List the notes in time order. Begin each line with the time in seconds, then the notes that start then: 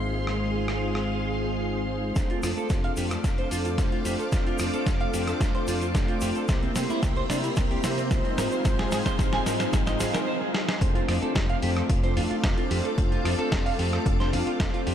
Already playing: G#1 G#3 C4 D#4 F4 G#4 C5 F5 C6
0.27 cross-stick
0.68 cross-stick
0.95 cross-stick
2.15 F1 A3 C4 D4 F4 A4 C5 F5 D6, kick, snare, closed hi-hat, shaker
2.30 F4, closed hi-hat
2.43 F2 F4, cross-stick, open hi-hat, shaker
2.56 A3 C4 D4 F4 A4 C5, muted fingered electric bass stroke, closed hi-hat, shaker
2.69 F1, kick, snare, closed hi-hat, shaker
2.84 F5, closed hi-hat
2.96 F2 A3 C4 D4 F4 G4 C5, open hi-hat, shaker
3.11 A4, cross-stick, closed hi-hat, shaker
3.24 F1, kick, snare, closed hi-hat, shaker
3.38 A3 C4 D4 F4 C5, closed hi-hat
3.51 F2 F4, open hi-hat, shaker
3.65 F4, closed hi-hat, shaker
3.78 F1 A3 C4 D4 F4 C5, kick, snare, closed hi-hat, shaker
3.92 F4, closed hi-hat
4.05 F2 G4, open hi-hat, shaker
4.19 A4, closed hi-hat, shaker
4.32 F1 A3 C4 D4 F4 C5, kick, snare, closed hi-hat, shaker
4.47 F4, closed hi-hat
4.58 F2 F4, cross-stick, open hi-hat, shaker
4.73 A3 C4 D4 F4 A4 C5, muted fingered electric bass stroke, closed hi-hat, shaker
4.86 F1, kick, snare, closed hi-hat, shaker
5.00 F5, closed hi-hat
5.13 F2 A3 C4 D4 F4 G4 C5, open hi-hat, shaker
5.27 A4, cross-stick, closed hi-hat, shaker
5.40 F1, kick, snare, closed hi-hat, shaker
5.54 A3 C4 D4 F4 C5, muted fingered electric bass stroke, closed hi-hat
5.67 F2 F4, open hi-hat, shaker
5.81 F4, closed hi-hat, shaker
5.94 F1 A3 C4 D4 F4 C5, kick, snare, closed hi-hat, shaker
6.08 F4, closed hi-hat
6.21 F2 G4, open hi-hat, shaker
6.35 A4, closed hi-hat, shaker
6.48 C2 A#3 C4 E4 G4 A#4 C5 E5 C6, kick, snare, closed hi-hat, shaker
6.63 C4, closed hi-hat
6.75 C3 C4, snare, open hi-hat, shaker
6.89 A#3 C4 E4 G4 C5, muted fingered electric bass stroke, closed hi-hat, shaker
7.03 C2, kick, snare, closed hi-hat, shaker
7.17 C5, closed hi-hat
7.29 C3 A#3 C4 D4 E4 G4 C5, snare, open hi-hat, shaker
7.44 E4, closed hi-hat, shaker
7.56 C2, kick, snare, closed hi-hat, shaker
7.70 A#3 C4 E4 G4 C5, closed hi-hat
7.84 C3 C4, snare, open hi-hat, shaker
7.98 C4, closed hi-hat, shaker
8.11 C2 G#3 C4 D#4 F4 C5, kick, snare, closed hi-hat, shaker
8.25 C4, closed hi-hat
8.38 G#2 G#4 A#4 F5, snare, open hi-hat, shaker
8.52 C5, closed hi-hat, shaker
8.65 G#1 G#3 C4 D#4 F4 C5, kick, snare, closed hi-hat, shaker
8.79 G#4, snare, closed hi-hat
8.92 G#2 G#4, snare, open hi-hat, shaker
9.05 G#3 C4 D#4 F4 C5, muted fingered electric bass stroke, kick, snare, shaker
9.19 G#1, kick, snare, closed hi-hat, shaker
9.33 G#5, snare, closed hi-hat
9.46 G#2 G#3 C4 D#4 F4 A#4 C5, snare, open hi-hat, shaker
9.60 C5, snare, closed hi-hat, shaker
9.73 G#1, kick, snare, closed hi-hat, shaker
9.87 G#3 C4 D#4 F4 C5 D#5, snare, closed hi-hat, shaker
10.00 G#2 G#3 C4 D#4 F4 G#4 F5, snare, open hi-hat, shaker
10.13 A#4, muted fingered electric bass stroke, snare, closed hi-hat, shaker
10.27 C5
10.41 G#4
10.54 G#4, snare
10.68 G#4, snare
10.81 F1 A3 C4 D4 F4 A4 C5 F5 D6, kick, closed hi-hat
10.95 F4, closed hi-hat
11.08 F2 F4, cross-stick, open hi-hat
11.22 A3 C4 D4 F4 A4 C5, muted fingered electric bass stroke, closed hi-hat
11.35 F1, kick, snare, closed hi-hat
11.49 F5, closed hi-hat
11.62 F2 A3 C4 D4 F4 G4 C5, open hi-hat
11.77 A4, cross-stick, closed hi-hat
11.89 F1, kick, closed hi-hat
12.03 A3 C4 D4 F4 C5, closed hi-hat
12.16 F2 A3 C4 D4 F4 F5, open hi-hat
12.31 F4, muted fingered electric bass stroke, closed hi-hat
12.44 F1, kick, snare, closed hi-hat
12.57 A3 C4 D4 F4 C5, closed hi-hat
12.71 F2 G4, open hi-hat
12.85 A4, closed hi-hat
12.97 F1 A3 C4 D4 F4 C5, kick, closed hi-hat
13.12 F4, closed hi-hat
13.25 F2 F4, cross-stick, open hi-hat
13.37 A3 C4 D4 F4 A4 C5, muted fingered electric bass stroke, closed hi-hat
13.52 F1, kick, snare, closed hi-hat
13.66 F5, open hi-hat
13.78 F2 A3 C4 D4 F4 G4 C5, open hi-hat
13.93 A4, cross-stick, closed hi-hat
14.06 F1, kick, closed hi-hat
14.19 A3 C4 D4 F4 C5, snare, closed hi-hat
14.32 F2 A3 C4 D4 F4 F5, open hi-hat
14.46 F4, muted fingered electric bass stroke, closed hi-hat
14.60 F1, kick, snare, closed hi-hat
14.73 A3 C4 D4 F4 C5, closed hi-hat
14.87 F2 G4, open hi-hat